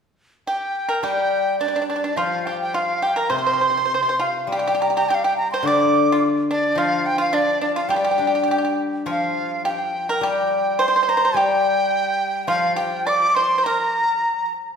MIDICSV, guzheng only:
0, 0, Header, 1, 2, 480
1, 0, Start_track
1, 0, Tempo, 571973
1, 877, Time_signature, 2, 2, 24, 8
1, 2784, Tempo, 590551
1, 4224, Tempo, 562324
1, 6624, Tempo, 584226
1, 8064, Tempo, 566572
1, 10464, Tempo, 579710
1, 12347, End_track
2, 0, Start_track
2, 0, Title_t, "Guzheng"
2, 0, Program_c, 0, 107
2, 861, Note_on_c, 0, 55, 50
2, 1817, Note_on_c, 0, 53, 50
2, 2295, Note_off_c, 0, 55, 0
2, 2769, Note_on_c, 0, 48, 46
2, 3254, Note_off_c, 0, 53, 0
2, 3721, Note_on_c, 0, 55, 44
2, 4216, Note_off_c, 0, 48, 0
2, 4683, Note_on_c, 0, 50, 50
2, 5179, Note_off_c, 0, 55, 0
2, 5646, Note_on_c, 0, 53, 51
2, 6128, Note_off_c, 0, 50, 0
2, 6611, Note_on_c, 0, 55, 49
2, 6861, Note_on_c, 0, 62, 38
2, 7090, Note_off_c, 0, 53, 0
2, 7098, Note_on_c, 0, 67, 34
2, 7575, Note_on_c, 0, 53, 51
2, 7826, Note_off_c, 0, 62, 0
2, 8058, Note_off_c, 0, 55, 0
2, 8062, Note_off_c, 0, 67, 0
2, 8535, Note_on_c, 0, 55, 53
2, 9027, Note_off_c, 0, 53, 0
2, 9483, Note_off_c, 0, 55, 0
2, 9493, Note_on_c, 0, 55, 53
2, 10453, Note_on_c, 0, 53, 52
2, 10931, Note_off_c, 0, 55, 0
2, 11905, Note_off_c, 0, 53, 0
2, 12347, End_track
0, 0, End_of_file